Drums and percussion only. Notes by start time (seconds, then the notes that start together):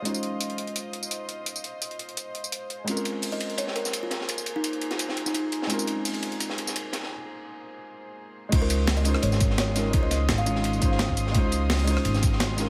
0.05 closed hi-hat, tambourine
0.14 tambourine
0.23 closed hi-hat, tambourine
0.41 closed hi-hat, tambourine
0.50 closed hi-hat
0.58 closed hi-hat
0.67 closed hi-hat
0.76 closed hi-hat, tambourine
0.93 closed hi-hat
1.03 tambourine
1.11 closed hi-hat, tambourine
1.29 closed hi-hat, tambourine
1.46 closed hi-hat, tambourine
1.56 tambourine
1.64 closed hi-hat, tambourine
1.82 closed hi-hat, tambourine
1.91 closed hi-hat
1.99 closed hi-hat
2.09 closed hi-hat
2.17 closed hi-hat, tambourine
2.35 closed hi-hat
2.44 tambourine
2.52 closed hi-hat, tambourine
2.70 closed hi-hat, tambourine
2.87 closed hi-hat, ride, tambourine
2.97 tambourine
3.05 closed hi-hat, ride, tambourine
3.22 closed hi-hat, open hi-hat, tambourine
3.32 closed hi-hat, ride
3.40 closed hi-hat, ride
3.50 closed hi-hat
3.58 closed hi-hat, ride, tambourine
3.67 snare
3.76 closed hi-hat, ride
3.85 snare, tambourine
3.93 closed hi-hat, ride, tambourine
4.11 snare, closed hi-hat, ride, tambourine
4.21 snare
4.29 closed hi-hat, ride, tambourine
4.38 tambourine
4.46 closed hi-hat, ride, tambourine
4.64 closed hi-hat, ride, tambourine
4.73 closed hi-hat
4.81 closed hi-hat, ride
4.91 snare, closed hi-hat
4.99 closed hi-hat, ride, tambourine
5.09 snare
5.17 closed hi-hat, ride
5.26 snare, tambourine
5.34 closed hi-hat, ride, tambourine
5.52 closed hi-hat, ride, tambourine
5.62 snare
5.70 closed hi-hat, ride, tambourine
5.79 tambourine
5.87 closed hi-hat, ride, tambourine
6.05 closed hi-hat, open hi-hat, tambourine
6.14 closed hi-hat, ride
6.23 closed hi-hat, ride
6.32 closed hi-hat
6.40 closed hi-hat, ride, tambourine
6.50 snare
6.58 closed hi-hat, ride
6.67 snare, tambourine
6.76 closed hi-hat, ride, tambourine
6.93 snare, closed hi-hat, ride, tambourine
7.03 snare
8.52 kick, closed hi-hat, ride, crash
8.70 closed hi-hat, ride, tambourine
8.87 snare, closed hi-hat, open hi-hat
8.96 ride, tambourine
9.05 closed hi-hat, ride, tambourine
9.15 cross-stick
9.22 closed hi-hat, ride
9.32 snare, tambourine
9.40 kick, closed hi-hat, ride, tambourine
9.50 snare
9.58 snare, closed hi-hat, ride
9.76 snare, closed hi-hat, ride, tambourine
9.93 kick, closed hi-hat, ride
10.11 snare, closed hi-hat, ride, tambourine
10.29 snare, closed hi-hat, ride
10.38 tambourine
10.46 closed hi-hat, ride, tambourine
10.55 snare
10.64 closed hi-hat, ride
10.73 tambourine
10.82 kick, closed hi-hat, ride, tambourine
10.92 snare
10.99 snare, closed hi-hat, ride
11.09 kick
11.17 closed hi-hat, ride, tambourine
11.27 snare
11.35 kick, closed hi-hat, ride
11.52 closed hi-hat, ride, tambourine
11.70 snare, closed hi-hat, open hi-hat
11.79 ride, tambourine
11.87 closed hi-hat, ride, tambourine
11.97 cross-stick
12.05 closed hi-hat, ride
12.14 snare, tambourine
12.23 kick, closed hi-hat, ride, tambourine
12.33 snare
12.40 snare, closed hi-hat, ride
12.58 snare, closed hi-hat, ride, tambourine